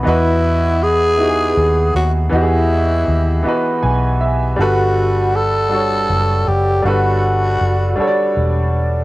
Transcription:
Already playing: grand piano E3 B3 F#4 B4 D#5
0.03 fingered electric bass E2, grand piano E3 B3 F#4 D#5
0.08 tenor saxophone E4, grand piano B4
0.83 tenor saxophone G#4
1.17 grand piano B3 D#4 E4
1.21 grand piano F#4 G4
1.28 grand piano G#4
1.57 fingered electric bass D#2
1.95 fingered electric bass D#2, tenor saxophone F#4
2.29 fingered electric bass E2, grand piano E3 B3 D#5, tenor saxophone E4
2.34 grand piano F#4 G4
2.41 grand piano G#4
3.08 fingered electric bass D#2
3.43 grand piano E3 B3 F#4 D#5, muted fingered electric bass stroke
3.48 grand piano B4
3.83 fingered electric bass B1, grand piano G#5
4.21 grand piano E5
4.56 fingered electric bass G1, grand piano G3 D4 F#4
4.60 tenor saxophone F#4, grand piano A4 B4
5.36 tenor saxophone A4
5.69 grand piano G3 D4 F#4
5.73 grand piano A4 C#5
6.10 fingered electric bass F#1
6.48 fingered electric bass F#1, tenor saxophone G4
6.82 fingered electric bass G1, grand piano G3 D4 F#4, tenor saxophone F#4
6.87 grand piano A4 B4
7.61 fingered electric bass F#1
7.96 grand piano G3 D4 F#4, muted fingered electric bass stroke
8.00 grand piano A4 C#5
8.07 grand piano D5
8.37 fingered electric bass E1

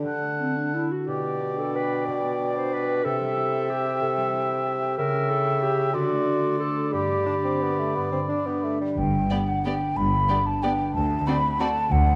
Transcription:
Already playing: bassoon D3, harp D4
0.05 harp D3, cor anglais F#5, flute A5
0.21 harp A3
0.38 clarinet C4, harp D4
0.56 clarinet D4, harp F#4
0.74 clarinet E4, harp A4
0.91 harp F#4, clarinet F#4
1.07 harp B2, bassoon B2, clarinet G4, cor anglais D5, flute G5
1.24 harp B3
1.41 harp D4
1.58 harp G4, clarinet A4
1.75 harp B4, clarinet B4
1.92 harp G4
2.07 harp B2, clarinet D5
2.23 harp B3
2.40 harp D4
2.56 harp G4, clarinet C5
2.73 harp B4, clarinet B4
2.89 harp G4
3.04 bassoon C3, harp C3, clarinet A4, cor anglais E5, flute G5
3.20 harp G3
3.36 harp E4
3.53 harp G4
3.70 clarinet G4, harp A4
3.86 harp G4
4.02 harp C3, clarinet A4
4.17 harp G3
4.33 harp E4
4.50 harp G4
4.66 harp A4
4.82 harp G4
4.97 harp C#3, bassoon C#3, clarinet A#4, cor anglais E5, flute G5
5.13 harp C#4
5.29 harp E4, clarinet A4
5.46 harp G4
5.63 clarinet G4, harp C#5
5.79 harp G4
5.93 bassoon D3, harp D3, clarinet F#4, cor anglais D5, flute C6
6.10 harp A3
6.26 harp D4
6.43 harp A4
6.59 clarinet A4, harp C5
6.76 harp A4
6.92 harp G2, bassoon G3, clarinet G4, cor anglais D5, flute B5
7.09 harp D3
7.26 bassoon D4, harp D4
7.44 bassoon C4, harp G4
7.62 bassoon B3, harp B4
7.79 bassoon A3, harp G4
7.95 harp G2, bassoon B3
8.12 harp D3, bassoon C4
8.29 bassoon D4, harp D4
8.46 bassoon B3, harp G4
8.64 bassoon A3, harp B4
8.81 bassoon G3, harp G4
8.97 double bass section G1, harp G2, cello section G2, flute G5
9.13 harp D3
9.31 viola section B3, harp D4, violin section G4 D5
9.48 harp G4, flute F#5
9.65 viola section B3, violin section G4 D5, harp B4, flute G5
9.82 harp G4
9.97 double bass section G1, cello section G2, harp G2, flute B5
10.13 harp D3
10.29 viola section B3, harp D4, violin section G4 D5
10.46 harp G4, flute A5
10.62 viola section B3, violin section G4 D5, harp B4, flute G5
10.79 harp G4
10.94 double bass section D2, cello section D2, harp D3, flute A5
11.10 harp A3
11.27 harp C4, viola section C4, violin section F#4 D5, flute B5
11.44 harp F#4
11.60 viola section C4, violin section F#4 D5, harp A4, flute A5
11.76 harp F#4
11.91 double bass section D2, cello section D2, harp D3, flute F#5
12.06 harp A3

